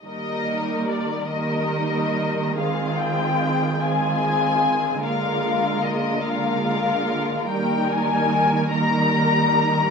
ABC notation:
X:1
M:6/8
L:1/8
Q:3/8=49
K:Eb
V:1 name="Violin section"
e2 d e3 | f g2 a3 | f2 e f3 | g a2 b3 |]
V:2 name="Violin section"
[EB]3 [EB]3 | [FA]3 [FA]3 | [FB]3 [FB]3 | [EB]3 [EB]3 |]
V:3 name="Viola section"
[G,B,]3 [G,B,]3 | [A,C]3 [A,C]3 | [A,B,]3 [A,B,]3 | [G,B,]3 [G,B,]3 |]
V:4 name="Cello section" clef=bass
E,6- | E,6 | D,6 | E,6 |]